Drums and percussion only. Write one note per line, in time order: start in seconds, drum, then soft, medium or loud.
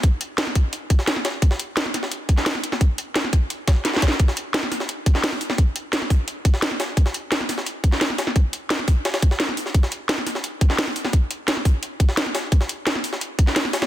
0.03 kick loud
0.03 closed hi-hat medium
0.21 closed hi-hat medium
0.38 snare loud
0.38 closed hi-hat medium
0.47 snare soft
0.55 kick loud
0.55 closed hi-hat medium
0.73 closed hi-hat medium
0.90 kick loud
0.90 closed hi-hat medium
0.99 snare medium
1.07 snare loud
1.07 closed hi-hat medium
1.16 snare soft
1.25 snare loud
1.25 closed hi-hat medium
1.42 kick loud
1.42 closed hi-hat medium
1.51 snare medium
1.59 closed hi-hat loud
1.59 closed hi-hat medium
1.77 snare loud
1.77 closed hi-hat medium
1.86 snare soft
1.94 snare soft
1.94 closed hi-hat medium
1.94 closed hi-hat loud
2.03 snare medium
2.11 closed hi-hat medium
2.29 kick loud
2.29 closed hi-hat medium
2.29 closed hi-hat loud
2.37 snare medium
2.37 snare soft
2.46 snare loud
2.46 closed hi-hat medium
2.46 open hi-hat medium
2.55 snare soft
2.64 closed hi-hat medium
2.64 closed hi-hat loud
2.72 snare medium
2.72 snare soft
2.81 kick loud
2.81 closed hi-hat medium
2.98 closed hi-hat medium
2.98 closed hi-hat loud
3.16 snare loud
3.16 closed hi-hat medium
3.24 snare soft
3.33 kick loud
3.33 closed hi-hat medium
3.33 closed hi-hat loud
3.50 closed hi-hat medium
3.68 kick loud
3.68 snare loud
3.68 closed hi-hat medium
3.68 closed hi-hat loud
3.85 snare medium
3.85 closed hi-hat medium
3.94 snare soft
3.96 snare medium
4.02 kick medium
4.02 snare loud
4.02 closed hi-hat loud
4.02 closed hi-hat medium
4.08 snare loud
4.11 snare medium
4.20 kick loud
4.20 closed hi-hat medium
4.28 snare medium
4.37 closed hi-hat loud
4.37 closed hi-hat medium
4.54 snare loud
4.54 closed hi-hat medium
4.63 snare medium
4.72 snare soft
4.72 closed hi-hat medium
4.72 open hi-hat medium
4.80 snare medium
4.89 closed hi-hat medium
5.06 kick loud
5.06 closed hi-hat loud
5.06 closed hi-hat medium
5.15 snare soft
5.15 snare medium
5.24 snare loud
5.24 closed hi-hat medium
5.24 open hi-hat medium
5.32 snare soft
5.41 closed hi-hat medium
5.41 open hi-hat medium
5.50 snare medium
5.50 snare soft
5.58 kick loud
5.58 closed hi-hat medium
5.76 closed hi-hat medium
5.93 snare loud
5.93 closed hi-hat medium
6.02 snare medium
6.10 kick loud
6.10 closed hi-hat medium
6.10 open hi-hat medium
6.28 closed hi-hat medium
6.45 kick loud
6.45 closed hi-hat medium
6.54 snare medium
6.62 snare loud
6.62 closed hi-hat medium
6.71 snare medium
6.80 snare loud
6.80 closed hi-hat medium
6.80 open hi-hat medium
6.97 kick loud
6.97 closed hi-hat medium
7.06 snare medium
7.14 closed hi-hat medium
7.32 snare loud
7.32 closed hi-hat medium
7.40 snare soft
7.49 snare soft
7.49 closed hi-hat medium
7.49 open hi-hat medium
7.58 snare medium
7.66 closed hi-hat medium
7.84 kick loud
7.84 closed hi-hat medium
7.92 snare medium
7.92 snare soft
8.01 snare loud
8.01 closed hi-hat medium
8.01 open hi-hat medium
8.10 snare soft
8.18 snare loud
8.18 closed hi-hat medium
8.18 open hi-hat medium
8.27 snare soft
8.36 kick loud
8.36 closed hi-hat medium
8.53 closed hi-hat medium
8.70 snare loud
8.70 closed hi-hat medium
8.79 snare soft
8.88 kick loud
8.88 closed hi-hat medium
8.88 open hi-hat medium
9.05 snare loud
9.05 closed hi-hat medium
9.14 snare loud
9.14 closed hi-hat medium
9.22 kick loud
9.22 closed hi-hat medium
9.31 snare medium
9.40 snare loud
9.40 closed hi-hat medium
9.48 snare soft
9.57 closed hi-hat medium
9.57 open hi-hat medium
9.66 snare soft
9.74 kick loud
9.74 closed hi-hat medium
9.83 snare medium
9.92 closed hi-hat medium
10.09 snare loud
10.09 closed hi-hat medium
10.18 snare soft
10.27 snare soft
10.27 closed hi-hat medium
10.27 open hi-hat medium
10.35 snare medium
10.44 closed hi-hat medium
10.61 kick loud
10.61 closed hi-hat medium
10.70 snare soft
10.70 snare medium
10.79 snare loud
10.79 closed hi-hat medium
10.79 open hi-hat medium
10.87 snare soft
10.96 closed hi-hat medium
10.96 open hi-hat medium
11.05 snare medium
11.05 snare soft
11.13 kick loud
11.13 closed hi-hat medium
11.31 closed hi-hat medium
11.48 snare loud
11.48 closed hi-hat medium
11.57 snare soft
11.65 kick loud
11.65 closed hi-hat medium
11.65 open hi-hat medium
11.83 closed hi-hat medium
12.00 kick loud
12.00 closed hi-hat medium
12.09 snare medium
12.17 snare loud
12.17 closed hi-hat medium
12.26 snare soft
12.35 snare loud
12.35 closed hi-hat medium
12.35 open hi-hat medium
12.52 kick loud
12.52 closed hi-hat medium
12.61 snare medium
12.69 closed hi-hat medium
12.87 snare loud
12.87 closed hi-hat medium
12.95 snare soft
13.04 closed hi-hat medium
13.04 open hi-hat medium
13.13 snare medium
13.21 closed hi-hat medium
13.39 kick loud
13.39 closed hi-hat loud
13.39 closed hi-hat medium
13.47 snare medium
13.47 snare soft
13.56 snare loud
13.56 closed hi-hat medium
13.56 open hi-hat medium
13.65 snare soft
13.73 snare loud
13.73 closed hi-hat medium
13.73 open hi-hat medium
13.82 snare medium
13.82 snare soft
13.82 closed hi-hat medium